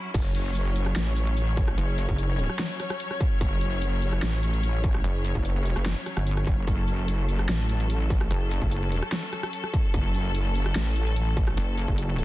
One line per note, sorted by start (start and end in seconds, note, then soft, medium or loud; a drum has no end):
0.00 12.25 F#3 medium
0.00 12.25 C#4 medium
0.00 0.12 E4 medium
0.14 0.94 F#1 loud
0.14 6.66 C#5 medium
0.14 kick loud
0.14 closed hi-hat medium
0.14 crash medium
0.35 closed hi-hat medium
0.55 closed hi-hat medium
0.76 closed hi-hat medium
0.86 cross-stick medium
0.96 1.76 A1 loud
0.96 snare loud
0.96 closed hi-hat medium
1.16 closed hi-hat medium
1.27 closed hi-hat soft
1.37 closed hi-hat medium
1.57 kick loud
1.57 closed hi-hat medium
1.68 cross-stick medium
1.78 2.07 F#1 loud
1.78 closed hi-hat medium
1.98 closed hi-hat medium
2.09 2.48 F#1 loud
2.09 kick medium
2.18 closed hi-hat medium
2.39 closed hi-hat medium
2.49 cross-stick medium
2.59 snare loud
2.59 closed hi-hat medium
2.80 cross-stick medium
2.80 closed hi-hat medium
2.90 cross-stick medium
2.90 closed hi-hat soft
3.00 closed hi-hat medium
3.11 cross-stick medium
3.20 kick loud
3.20 closed hi-hat medium
3.41 4.21 F#1 loud
3.41 kick loud
3.41 closed hi-hat medium
3.61 closed hi-hat medium
3.82 closed hi-hat medium
4.02 closed hi-hat medium
4.13 cross-stick medium
4.23 5.03 A1 loud
4.23 snare loud
4.23 closed hi-hat medium
4.43 closed hi-hat medium
4.54 closed hi-hat soft
4.63 closed hi-hat medium
4.84 kick loud
4.84 closed hi-hat medium
4.94 cross-stick medium
5.04 5.33 F#1 loud
5.04 closed hi-hat medium
5.25 closed hi-hat medium
5.35 5.74 F#1 medium
5.35 kick medium
5.45 closed hi-hat medium
5.65 closed hi-hat medium
5.76 5.95 F#1 loud
5.76 cross-stick medium
5.86 snare loud
5.86 closed hi-hat medium
6.06 cross-stick medium
6.06 closed hi-hat medium
6.17 6.45 G1 loud
6.17 cross-stick medium
6.17 closed hi-hat soft
6.27 closed hi-hat medium
6.37 cross-stick medium
6.37 closed hi-hat soft
6.47 6.66 F#1 medium
6.47 kick loud
6.47 closed hi-hat medium
6.67 7.47 F#1 loud
6.67 12.25 A4 loud
6.67 kick loud
6.67 closed hi-hat medium
6.88 closed hi-hat soft
7.08 closed hi-hat medium
7.29 closed hi-hat soft
7.39 cross-stick medium
7.49 8.29 A1 loud
7.49 snare loud
7.49 closed hi-hat medium
7.70 closed hi-hat medium
7.80 closed hi-hat soft
7.90 closed hi-hat medium
8.10 kick loud
8.10 closed hi-hat soft
8.21 cross-stick medium
8.31 8.60 F#1 loud
8.31 closed hi-hat medium
8.51 closed hi-hat soft
8.62 9.01 F#1 loud
8.62 kick medium
8.72 closed hi-hat medium
8.92 closed hi-hat soft
9.03 cross-stick medium
9.12 snare loud
9.12 closed hi-hat medium
9.33 cross-stick medium
9.33 closed hi-hat medium
9.43 cross-stick medium
9.43 closed hi-hat soft
9.53 closed hi-hat medium
9.64 cross-stick medium
9.74 kick loud
9.74 closed hi-hat medium
9.94 10.74 F#1 loud
9.94 kick loud
9.94 closed hi-hat medium
10.14 closed hi-hat medium
10.35 closed hi-hat medium
10.55 closed hi-hat soft
10.66 cross-stick medium
10.76 11.56 A1 loud
10.76 snare loud
10.76 closed hi-hat medium
10.96 closed hi-hat medium
11.07 closed hi-hat soft
11.16 closed hi-hat medium
11.37 kick loud
11.37 closed hi-hat medium
11.47 cross-stick medium
11.57 11.87 F#1 loud
11.57 closed hi-hat medium
11.78 closed hi-hat medium
11.88 12.25 F#1 loud
11.88 kick medium
11.98 closed hi-hat medium
12.18 closed hi-hat medium